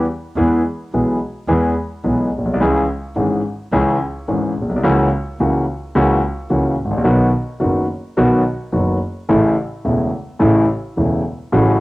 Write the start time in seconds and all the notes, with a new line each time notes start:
0.36 E2 E3 G#3 B3 G#4
0.93 B1 B2 E3 G#3 B3 G#4
1.48 E2 E3 G#3 B3 G#4
2.04 B1 B2 E3 G#3 B3 G#4
2.32 B1
2.38 A#1
2.45 B1
2.54 C2
2.60 C#2 C#3 E3 G#3 C#4 G#4
3.16 G#1 G#2 E3 G#3 C#4 G#4
3.72 C#2 C#3 E3 G#3 C#4 G#4
4.28 G#1 G#2 E3 G#3 C#4 G#4
4.56 B1
4.61 A#1
4.69 B1
4.76 C2
4.83 C#2 C#3 E3 A#3 C#4 F#4
5.39 C#2 C#3 E3 A#3 C#4 F#4
5.95 C#2 C#3 E3 A#3 C#4 F#4
6.50 C#2 C#3 E3 A#3 C#4 F#4
6.78 A1
6.85 G#1
6.91 A1
6.98 A#1
7.04 B1 B2 D#3 F#3 B3 F#4
7.60 F#1 F#2 D#3 F#3 B3 F#4
8.17 B1 B2 D#3 F#3 B3 F#4
8.73 F#1 F#2 D#3 F#3 B3 F#4
9.29 A1 A2 C#3 E3 A3 E4
9.85 E1 E2 C#3 E3 A3 E4
10.39 A1 A2 C#3 E3 A3 E4
10.97 E1 E2 C#3 E3 A3 E4
11.52 A1 A2 C#3 F#3 A3 F#4